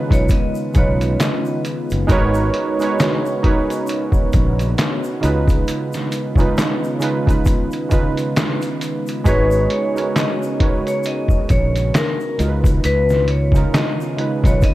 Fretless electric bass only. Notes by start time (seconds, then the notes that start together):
0.11 B1
0.76 B1
1.92 F#1
2.10 G#1
4.35 A#1
5.24 C#2
9.26 G#1
11.51 A#1
12.40 C#2
12.85 C#2
14.44 B1